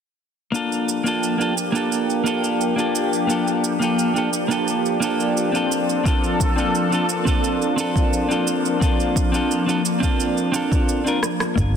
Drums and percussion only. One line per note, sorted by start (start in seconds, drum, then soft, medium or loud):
0.55 shaker soft
0.72 shaker soft
0.89 shaker medium
1.06 shaker soft
1.23 shaker soft
1.41 shaker soft
1.58 shaker medium
1.75 shaker soft
1.92 shaker soft
2.10 shaker soft
2.26 shaker medium
2.44 shaker soft
2.61 shaker soft
2.79 shaker soft
2.95 shaker medium
3.13 shaker soft
3.30 shaker soft
3.47 shaker soft
3.64 shaker medium
3.82 shaker soft
3.99 shaker soft
4.16 shaker soft
4.33 shaker medium
4.51 shaker soft
4.68 shaker soft
4.86 shaker soft
5.02 shaker medium
5.20 shaker soft
5.37 shaker soft
5.55 shaker soft
5.72 shaker medium
5.89 shaker soft
6.06 kick loud
6.06 shaker soft
6.24 shaker soft
6.40 kick loud
6.40 shaker medium
6.58 shaker soft
6.75 shaker soft
6.92 shaker soft
7.09 shaker medium
7.27 kick medium
7.27 shaker soft
7.44 shaker soft
7.62 shaker soft
7.78 shaker medium
7.96 kick loud
7.96 shaker soft
8.13 shaker soft
8.31 shaker soft
8.48 shaker medium
8.65 shaker soft
8.81 kick loud
8.81 shaker soft
9.00 shaker soft
9.16 kick medium
9.16 shaker medium
9.34 shaker soft
9.51 shaker soft
9.69 shaker soft
9.85 shaker medium
10.03 kick medium
10.03 shaker soft
10.20 shaker soft
10.38 shaker soft
10.54 shaker medium
10.72 kick loud
10.72 shaker soft
10.89 shaker soft
11.07 shaker soft
11.23 cross-stick medium
11.23 shaker medium
11.40 cross-stick medium
11.40 shaker soft
11.58 kick loud
11.58 shaker soft